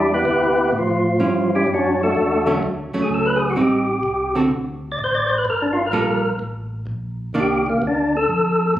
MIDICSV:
0, 0, Header, 1, 4, 480
1, 0, Start_track
1, 0, Tempo, 472441
1, 1708, Time_signature, 4, 2, 24, 8
1, 8938, End_track
2, 0, Start_track
2, 0, Title_t, "Tonewheel organ"
2, 0, Program_c, 0, 16
2, 0, Note_on_c, 0, 55, 62
2, 0, Note_on_c, 0, 62, 64
2, 0, Note_on_c, 0, 64, 61
2, 0, Note_on_c, 0, 67, 74
2, 126, Note_off_c, 0, 62, 0
2, 126, Note_off_c, 0, 64, 0
2, 126, Note_off_c, 0, 67, 0
2, 128, Note_off_c, 0, 55, 0
2, 143, Note_on_c, 0, 71, 93
2, 144, Note_on_c, 0, 59, 79
2, 145, Note_on_c, 0, 64, 76
2, 145, Note_on_c, 0, 67, 78
2, 724, Note_off_c, 0, 59, 0
2, 724, Note_off_c, 0, 71, 0
2, 725, Note_off_c, 0, 64, 0
2, 725, Note_off_c, 0, 67, 0
2, 793, Note_on_c, 0, 65, 68
2, 803, Note_on_c, 0, 53, 57
2, 1531, Note_off_c, 0, 65, 0
2, 1535, Note_off_c, 0, 53, 0
2, 1576, Note_on_c, 0, 67, 103
2, 1582, Note_on_c, 0, 61, 76
2, 1584, Note_on_c, 0, 64, 83
2, 1588, Note_on_c, 0, 55, 80
2, 1717, Note_off_c, 0, 67, 0
2, 1720, Note_off_c, 0, 61, 0
2, 1721, Note_off_c, 0, 64, 0
2, 1723, Note_off_c, 0, 55, 0
2, 1765, Note_on_c, 0, 66, 78
2, 1768, Note_on_c, 0, 62, 63
2, 1769, Note_on_c, 0, 54, 67
2, 1772, Note_on_c, 0, 61, 62
2, 2049, Note_off_c, 0, 66, 0
2, 2050, Note_off_c, 0, 54, 0
2, 2050, Note_off_c, 0, 62, 0
2, 2052, Note_off_c, 0, 61, 0
2, 2065, Note_on_c, 0, 69, 76
2, 2067, Note_on_c, 0, 57, 70
2, 2069, Note_on_c, 0, 62, 66
2, 2073, Note_on_c, 0, 66, 63
2, 2644, Note_off_c, 0, 69, 0
2, 2645, Note_off_c, 0, 57, 0
2, 2646, Note_off_c, 0, 62, 0
2, 2648, Note_off_c, 0, 66, 0
2, 3071, Note_on_c, 0, 68, 77
2, 3146, Note_off_c, 0, 68, 0
2, 3190, Note_on_c, 0, 69, 101
2, 3312, Note_on_c, 0, 71, 105
2, 3325, Note_off_c, 0, 69, 0
2, 3416, Note_on_c, 0, 68, 92
2, 3465, Note_off_c, 0, 71, 0
2, 3518, Note_off_c, 0, 68, 0
2, 3555, Note_on_c, 0, 66, 91
2, 3628, Note_off_c, 0, 66, 0
2, 3674, Note_on_c, 0, 67, 93
2, 4410, Note_off_c, 0, 67, 0
2, 4995, Note_on_c, 0, 74, 88
2, 5068, Note_off_c, 0, 74, 0
2, 5120, Note_on_c, 0, 72, 96
2, 5227, Note_on_c, 0, 74, 97
2, 5249, Note_off_c, 0, 72, 0
2, 5343, Note_on_c, 0, 72, 96
2, 5382, Note_off_c, 0, 74, 0
2, 5441, Note_off_c, 0, 72, 0
2, 5468, Note_on_c, 0, 71, 88
2, 5544, Note_off_c, 0, 71, 0
2, 5586, Note_on_c, 0, 70, 96
2, 5709, Note_on_c, 0, 62, 66
2, 5722, Note_off_c, 0, 70, 0
2, 5819, Note_on_c, 0, 65, 84
2, 5863, Note_off_c, 0, 62, 0
2, 5919, Note_off_c, 0, 65, 0
2, 5957, Note_on_c, 0, 70, 72
2, 6398, Note_off_c, 0, 70, 0
2, 7517, Note_on_c, 0, 67, 87
2, 7804, Note_off_c, 0, 67, 0
2, 7819, Note_on_c, 0, 58, 73
2, 7958, Note_off_c, 0, 58, 0
2, 7999, Note_on_c, 0, 62, 94
2, 8285, Note_off_c, 0, 62, 0
2, 8298, Note_on_c, 0, 69, 100
2, 8882, Note_off_c, 0, 69, 0
2, 8938, End_track
3, 0, Start_track
3, 0, Title_t, "Hollow-body jazz guitar"
3, 0, Program_c, 1, 26
3, 1216, Note_on_c, 1, 55, 54
3, 1220, Note_on_c, 1, 61, 52
3, 1228, Note_on_c, 1, 64, 58
3, 1511, Note_off_c, 1, 55, 0
3, 1513, Note_off_c, 1, 61, 0
3, 1517, Note_off_c, 1, 64, 0
3, 2501, Note_on_c, 1, 50, 63
3, 2507, Note_on_c, 1, 54, 68
3, 2511, Note_on_c, 1, 57, 70
3, 2516, Note_on_c, 1, 61, 72
3, 2647, Note_off_c, 1, 50, 0
3, 2650, Note_off_c, 1, 54, 0
3, 2652, Note_off_c, 1, 57, 0
3, 2655, Note_off_c, 1, 61, 0
3, 2985, Note_on_c, 1, 54, 64
3, 2987, Note_on_c, 1, 57, 61
3, 2991, Note_on_c, 1, 61, 69
3, 3593, Note_off_c, 1, 54, 0
3, 3594, Note_off_c, 1, 57, 0
3, 3596, Note_off_c, 1, 61, 0
3, 3615, Note_on_c, 1, 55, 50
3, 3622, Note_on_c, 1, 60, 52
3, 3629, Note_on_c, 1, 63, 58
3, 3910, Note_off_c, 1, 55, 0
3, 3913, Note_off_c, 1, 60, 0
3, 3917, Note_off_c, 1, 63, 0
3, 4422, Note_on_c, 1, 50, 61
3, 4425, Note_on_c, 1, 60, 66
3, 4432, Note_on_c, 1, 66, 68
3, 4433, Note_on_c, 1, 69, 59
3, 4567, Note_off_c, 1, 50, 0
3, 4569, Note_off_c, 1, 60, 0
3, 4572, Note_off_c, 1, 66, 0
3, 4573, Note_off_c, 1, 69, 0
3, 6022, Note_on_c, 1, 55, 50
3, 6024, Note_on_c, 1, 58, 52
3, 6027, Note_on_c, 1, 65, 60
3, 6034, Note_on_c, 1, 69, 59
3, 6313, Note_off_c, 1, 55, 0
3, 6314, Note_off_c, 1, 58, 0
3, 6316, Note_off_c, 1, 65, 0
3, 6319, Note_off_c, 1, 69, 0
3, 7459, Note_on_c, 1, 51, 59
3, 7464, Note_on_c, 1, 58, 64
3, 7473, Note_on_c, 1, 62, 64
3, 7752, Note_off_c, 1, 51, 0
3, 7754, Note_off_c, 1, 58, 0
3, 7759, Note_off_c, 1, 62, 0
3, 8938, End_track
4, 0, Start_track
4, 0, Title_t, "Tonewheel organ"
4, 0, Program_c, 2, 16
4, 0, Note_on_c, 2, 40, 70
4, 251, Note_off_c, 2, 40, 0
4, 257, Note_on_c, 2, 38, 87
4, 728, Note_off_c, 2, 38, 0
4, 735, Note_on_c, 2, 45, 80
4, 1207, Note_off_c, 2, 45, 0
4, 1216, Note_on_c, 2, 43, 72
4, 1687, Note_off_c, 2, 43, 0
4, 1699, Note_on_c, 2, 42, 72
4, 2168, Note_off_c, 2, 42, 0
4, 2184, Note_on_c, 2, 40, 83
4, 2651, Note_off_c, 2, 40, 0
4, 2669, Note_on_c, 2, 38, 80
4, 2967, Note_off_c, 2, 38, 0
4, 2982, Note_on_c, 2, 38, 39
4, 3063, Note_off_c, 2, 38, 0
4, 3144, Note_on_c, 2, 37, 78
4, 3611, Note_off_c, 2, 37, 0
4, 3623, Note_on_c, 2, 33, 82
4, 4090, Note_off_c, 2, 33, 0
4, 4097, Note_on_c, 2, 36, 91
4, 4567, Note_off_c, 2, 36, 0
4, 4585, Note_on_c, 2, 38, 75
4, 5051, Note_off_c, 2, 38, 0
4, 5066, Note_on_c, 2, 33, 86
4, 5531, Note_off_c, 2, 33, 0
4, 5535, Note_on_c, 2, 31, 73
4, 6006, Note_off_c, 2, 31, 0
4, 6015, Note_on_c, 2, 34, 95
4, 6486, Note_off_c, 2, 34, 0
4, 6495, Note_on_c, 2, 33, 75
4, 6966, Note_off_c, 2, 33, 0
4, 6977, Note_on_c, 2, 34, 85
4, 7447, Note_off_c, 2, 34, 0
4, 7463, Note_on_c, 2, 36, 70
4, 7763, Note_off_c, 2, 36, 0
4, 7786, Note_on_c, 2, 36, 42
4, 7866, Note_off_c, 2, 36, 0
4, 7942, Note_on_c, 2, 38, 94
4, 8410, Note_off_c, 2, 38, 0
4, 8424, Note_on_c, 2, 41, 93
4, 8891, Note_off_c, 2, 41, 0
4, 8938, End_track
0, 0, End_of_file